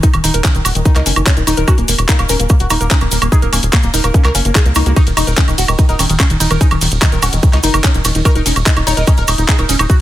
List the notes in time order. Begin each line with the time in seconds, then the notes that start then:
0.03 D#4, kick, closed hi-hat, cabasa
0.13 D#1 D#3, closed hi-hat, cabasa, high woodblock
0.24 D#1 D#3 D#4, open hi-hat, cabasa
0.34 D#1 A#4, closed hi-hat, cabasa
0.44 D#3 C#4, kick, clap, closed hi-hat, cabasa, high woodblock
0.55 D#1 D#3, closed hi-hat, cabasa
0.65 D#1 F#4, open hi-hat, cabasa, high woodblock
0.75 D#1 D#3, closed hi-hat, cabasa
0.85 D#3 D#4, kick, closed hi-hat, cabasa
0.95 C#2 D#4 A#4, clap, closed hi-hat, cabasa, high woodblock
1.06 F#1 D#3 C#4, open hi-hat, cabasa
1.16 F#1 D#3, closed hi-hat, cabasa, high woodblock
1.27 C#4, kick, clap, closed hi-hat, cabasa
1.37 D#1 D#3, closed hi-hat, cabasa
1.47 D#1 D#3 D#4, open hi-hat, cabasa, high woodblock
1.57 D#1 D#3 A#4, closed hi-hat, cabasa
1.68 C#4 F#4, kick, closed hi-hat, cabasa, high woodblock
1.78 D#1 A#3, closed hi-hat, cabasa
1.88 E1 A#3, open hi-hat, cabasa
1.98 D#1, closed hi-hat, cabasa, high woodblock
2.09 A#3 D#4, kick, clap, closed hi-hat, cabasa
2.19 D#1 A#3 A#4, closed hi-hat, cabasa, high woodblock
2.29 D#1 C#4 A#4, open hi-hat, cabasa
2.40 D#1 A#3, closed hi-hat, cabasa
2.49 A#3, kick, closed hi-hat, cabasa, high woodblock
2.59 D#1 F#4, closed hi-hat, cabasa
2.70 D#1 A#3 D#4, open hi-hat, cabasa, high woodblock
2.81 D#1 A#3 A#4, closed hi-hat, cabasa
2.91 C#4 D#4, kick, clap, closed hi-hat, cabasa
3.01 D#1 A#3, closed hi-hat, cabasa, high woodblock
3.11 D#1 A#3, open hi-hat, cabasa
3.22 D#1 A#3, closed hi-hat, cabasa, high woodblock
3.32 D#4 G#4, kick, closed hi-hat, cabasa
3.42 D#1 A#3 A#4, closed hi-hat, cabasa
3.53 D#1 A#3 C#4, open hi-hat, cabasa, high woodblock
3.63 D#1, closed hi-hat, cabasa
3.72 A#3, kick, clap, closed hi-hat, cabasa, high woodblock
3.83 D#1 A#3, closed hi-hat, cabasa
3.94 D#1 D#4 A#4, open hi-hat, cabasa
4.04 D#1 A#3 A#4, closed hi-hat, cabasa, high woodblock
4.14 A#3 C#4, kick, closed hi-hat, cabasa
4.24 C#2 A#4, clap, closed hi-hat, cabasa, high woodblock
4.35 F#1 A#3 C#4, open hi-hat, cabasa
4.45 F#1 A#3, closed hi-hat, cabasa
4.55 D#4 G#4, kick, clap, closed hi-hat, cabasa, high woodblock
4.66 C#2 A#3, closed hi-hat, cabasa
4.75 C#2 A#3 D#4, open hi-hat, cabasa, high woodblock
4.86 C#2 A#3 F#4, closed hi-hat, cabasa
4.96 D#4, kick, closed hi-hat, ride, cabasa, high woodblock
5.07 D#1 D#3, closed hi-hat, cabasa
5.17 E1 D#3 D#4, open hi-hat, ride, cabasa, high woodblock
5.27 D#1 A#4, closed hi-hat, cabasa
5.37 D#3 C#4, kick, clap, closed hi-hat, ride, cabasa
5.48 D#1 D#3, closed hi-hat, cabasa, high woodblock
5.58 D#1 F#4, open hi-hat, ride, cabasa
5.68 D#1 D#3, closed hi-hat, cabasa, high woodblock
5.79 D#3 D#4, kick, closed hi-hat, ride, cabasa
5.89 D#1 D#4 A#4, closed hi-hat, cabasa
5.99 D#1 D#3 C#4, open hi-hat, ride, cabasa, high woodblock
6.09 D#1 D#3, closed hi-hat, cabasa
6.20 C#4, kick, clap, closed hi-hat, ride, cabasa, high woodblock
6.30 D#1 D#3, closed hi-hat, cabasa
6.40 D#1 D#3 D#4, open hi-hat, ride, cabasa
6.51 D#1 D#3 A#4, closed hi-hat, cabasa, high woodblock
6.61 C#4 D#4, kick, closed hi-hat, ride, cabasa
6.71 D#1 D#3, closed hi-hat, cabasa, high woodblock
6.81 D#1 D#3, open hi-hat, ride, cabasa
6.91 D#1, closed hi-hat, cabasa
7.02 D#3 D#4, kick, clap, closed hi-hat, ride, cabasa, high woodblock
7.12 D#1 D#3 A#4, closed hi-hat, cabasa
7.22 D#1 C#4 F#4, open hi-hat, ride, cabasa, high woodblock
7.33 D#1 D#3, closed hi-hat, cabasa
7.43 D#3, kick, closed hi-hat, ride, cabasa
7.53 C#2 D#4, clap, closed hi-hat, cabasa, high woodblock
7.63 F#1 D#3 D#4, open hi-hat, ride, cabasa
7.74 F#1 D#3 A#4, closed hi-hat, cabasa, high woodblock
7.84 C#4, kick, clap, closed hi-hat, ride, cabasa
7.94 D#1 D#3, closed hi-hat, cabasa
8.05 D#1 D#3, open hi-hat, ride, cabasa, high woodblock
8.15 D#1 D#3, closed hi-hat, cabasa
8.25 D#4 A#4, kick, closed hi-hat, ride, cabasa, high woodblock
8.35 D#1 D#4 A#4, closed hi-hat, cabasa
8.46 E1 C#4 D#4, open hi-hat, ride, cabasa
8.56 D#1, closed hi-hat, cabasa, high woodblock
8.66 D#4, kick, clap, closed hi-hat, ride, cabasa
8.76 D#1 D#4, closed hi-hat, cabasa, high woodblock
8.87 D#1 D#4 C#5, open hi-hat, ride, cabasa
8.97 D#1 D#4 A#4, closed hi-hat, cabasa
9.07 C#4 D#4, kick, closed hi-hat, ride, cabasa, high woodblock
9.17 D#1 A#4, closed hi-hat, cabasa
9.28 D#1 D#4, open hi-hat, ride, cabasa, high woodblock
9.38 D#1 D#4, closed hi-hat, cabasa
9.48 D#4 G#4, kick, clap, closed hi-hat, ride, cabasa
9.58 D#1 D#4 A#4, closed hi-hat, cabasa, high woodblock
9.69 D#1 C#4 D#4, open hi-hat, ride, cabasa
9.79 D#1 D#4, closed hi-hat, cabasa, high woodblock
9.90 F#4, kick, closed hi-hat, ride, cabasa